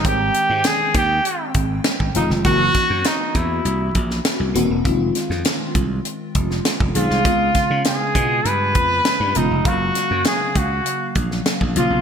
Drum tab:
HH |x-x-x-x-x-x-x-x-|x-x-x-x-x-x-x-x-|x-x-x-x-x-x-x-x-|x-x-x-x-x-x-x-x-|
SD |----o-------o--o|--o-o------oo---|--ooo------oo--o|--o-o-------o---|
BD |o-----o---o--o--|o-o---o---o-----|o-----o---o--o--|o-o---o---o-----|

HH |x-x-x-x-x-x-x-x-|
SD |--o-o------oo---|
BD |o-----o---o--o--|